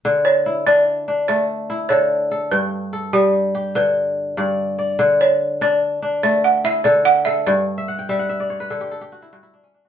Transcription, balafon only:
\new Staff \with { instrumentName = "Balafon" } { \time 12/8 \key d \major \tempo 4. = 97 r8 cis''4 d''4 r8 d''4. cis''4. | b'4. g'4. b'4 r2 | r8 cis''4 d''4. d''8 fis''8 e''8 d''8 fis''8 e''8 | d''1~ d''4 r4 | }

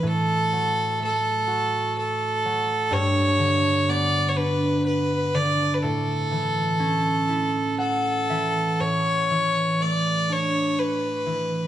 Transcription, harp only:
<<
  \new Staff \with { instrumentName = "Harp" } { \time 3/4 \key a \mixolydian \tempo 4 = 62 r2. | r2. | r2 fis''8 e''8 | r2. | }
  \new Staff \with { instrumentName = "Harp" } { \clef bass \time 3/4 \key a \mixolydian a,8 fis8 a8 fis'4 fis8 | g,8 d8 b8 d'4 d8 | a,8 e8 cis'8 e'4 e8 | a,8 e8 a8 d'4 e8 | }
>>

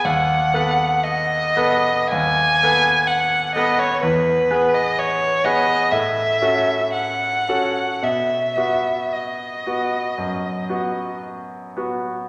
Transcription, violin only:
\new Staff \with { instrumentName = "Violin" } { \time 4/4 \key b \mixolydian \tempo 4 = 58 fis''4 dis''4 gis''4 fis''8 dis''16 cis''16 | b'8. dis''16 cis''8 dis''8 e''4 fis''4 | e''4 dis''2 r4 | }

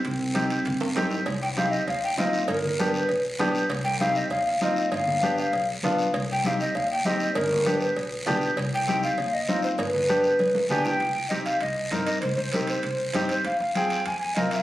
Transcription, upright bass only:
\new Staff \with { instrumentName = "Upright bass" } { \clef bass \time 4/4 \key c \minor \tempo 4 = 197 c,2 g,4 g,4 | c,2 ees,4 ees,4 | g,,2 b,,4 b,,4 | c,2 ees,4 ees,4 |
g,,2 b,,4 b,,4 | c,2 ees,4 ees,4 | g,,2 b,,4 b,,4 | c,2 ees,4 ees,4 |
g,,2 b,,4 b,,4 | c,16 r16 c,4. c,4 g,4 | c,16 r16 c,4. c,4 g,4 | f,16 r16 f,4. f,4 c,4 | }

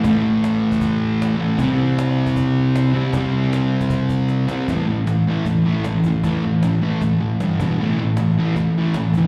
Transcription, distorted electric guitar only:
\new Staff \with { instrumentName = "Distorted electric guitar" } { \clef bass \time 4/4 \key a \minor \tempo 4 = 155 <a, e a>2.~ <a, e a>8 <a, e a>8 | <c g c'>2.~ <c g c'>8 <c g c'>8 | <c g c'>2.~ <c g c'>8 <c g c'>8 | <a, e a>8 <a, e>8 <a, e>8 <a, e a>8 <a, e>8 <a, e a>8 <a, e>8 <a, e>8 |
<a, e a>8 <a, e>8 <a, e>8 <a, e a>8 <a, e>8 <a, e>8 <g, d g>8 <e, b, e>8 | <a, e a>8 <a, e>8 <a, e>8 <a, e a>8 <a, e>8 <a, e a>8 <a, e>8 <a, e>8 | }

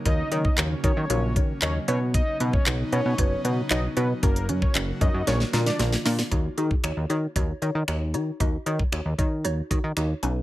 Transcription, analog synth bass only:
\new Staff \with { instrumentName = "Analog synth bass" } { \clef bass \time 4/4 \key ees \minor \tempo 4 = 115 ees,8 ees8 ees,8 ees16 ees16 bes,,8 ees8 ees,8 b,8~ | b,8 b,8 b,,8 b,16 b,16 fis,,8 b,8 b,,8 b,8 | ges,,8 ges,8 ges,,8 ges,16 ges,16 bes,,8 bes,8 bes,,8 bes,8 | ees,8 ees8 ees,16 ees,16 ees8 ees,8 ees16 ees16 ees,8 ees8 |
ees,8 ees8 ees,16 ees,16 ees8 ees,8 ees16 ees16 ees,8 b,,8 | }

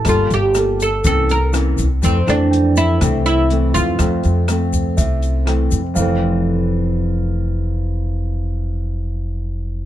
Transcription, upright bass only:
\new Staff \with { instrumentName = "Upright bass" } { \clef bass \time 4/4 \key f \major \tempo 4 = 122 g,,8 g,,4. c,4. c,8 | f,8 f,4. c,4. f,8 | f,8 f,4. c,4. f,8 | f,,1~ |
f,,1 | }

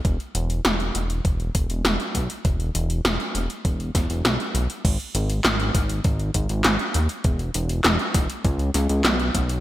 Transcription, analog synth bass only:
\new Staff \with { instrumentName = "Analog synth bass" } { \clef bass \time 4/4 \key e \lydian \tempo 4 = 100 e,,16 r16 e,,8 e,,8 e,,8 e,,8 e,,16 e,,16 e,,16 r16 b,,16 r16 | e,,8 e,,8 e,,16 r16 e,,16 r16 e,,8 e,,16 e,,16 b,,16 r16 b,,16 r16 | gis,,16 r16 gis,,8 gis,,8 gis,,8 gis,,8 gis,,16 gis,,16 gis,,16 r16 dis,16 r16 | e,,8 e,,8 e,,16 r16 e,,16 r16 cis,8 cis,16 cis,16 b,,8 b,,8 | }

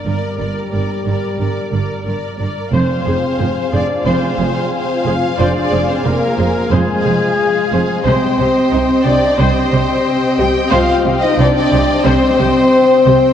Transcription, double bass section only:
\new Staff \with { instrumentName = "Double bass section" } { \clef bass \time 4/4 \key f \dorian \tempo 4 = 90 g,,8 g,,8 g,,8 g,,8 g,,8 g,,8 g,,8 g,,8 | f,,8 f,,8 f,,8 f,,8 f,,8 f,,8 r8 f,,8 | f,,8 f,,8 f,,8 f,,8 f,,8 f,,8 r8 f,,8 | c,8 c,8 c,8 c,8 c,8 c,8 r8 c,8 |
c,8 c,8 c,8 c,8 c,8 c,8 r8 c,8 | }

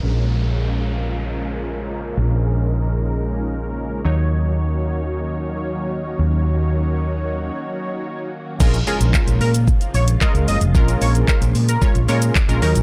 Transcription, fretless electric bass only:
\new Staff \with { instrumentName = "Fretless electric bass" } { \clef bass \time 4/4 \key bes \minor \tempo 4 = 112 bes,,1 | bes,,2.~ bes,,8 ees,8~ | ees,2.~ ees,8 ees,8~ | ees,2 r2 |
bes,,8 r16 bes,,16 r16 bes,,16 bes,8. r16 bes,,8 r16 des,16 ges,,16 f,,16 | bes,,8 bes,,8 r16 bes,,16 bes,8 r16 bes,,16 bes,8 r16 bes,,16 ees,16 bes,,16 | }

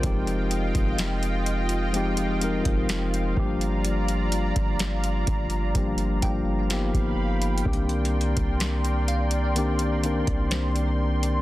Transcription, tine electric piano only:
\new Staff \with { instrumentName = "Tine electric piano" } { \time 4/4 \key c \minor \tempo 4 = 63 << { bes'16 r2. r8. | r1 | r1 | } \\ { <f aes c' ees' g'>4.~ <f aes c' ees' g'>16 r16 <f aes c' ees' g'>8 <f aes c' ees' bes'>4 <f g bes d' g'>8~ | <f g bes d' g'>4~ <f g bes d' g'>16 r8. <f g bes d' g'>8 <f g bes d' g'>8 <f ais b dis' g'>4 | <d ees bes c' d' g'>4.~ <d ees bes c' d' g'>16 r16 <ees bes c' d' g'>8 <ees bes c' d' bes'>4. | } >> }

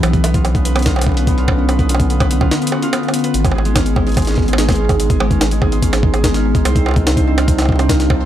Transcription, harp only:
\new Staff \with { instrumentName = "Harp" } { \time 4/4 \key gis \dorian \tempo 4 = 145 b16 b'16 b16 eis'16 r16 b16 b'16 b16 eis'16 r16 b16 b'16 b16 eis'16 r16 b16 | b'16 b16 eis'16 r16 b16 b'16 b16 eis'16 r16 b16 fis'16 eis'16 b16 r16 b16 b'16 | r16 gis16 gis'16 gis16 cis'16 r16 gis16 gis'16 gis16 cis'16 r16 gis16 gis'16 gis16 cis'16 r16 | gis16 gis'16 gis16 cis'16 r16 gis16 gis'16 gis16 cis'16 r16 gis16 gis'16 gis16 cis'16 r16 gis16 |
c''16 c'16 eis'16 r16 c'16 c''16 c'16 eis'16 r16 c'16 c''16 c'16 eis'16 r16 c'16 c''16 | }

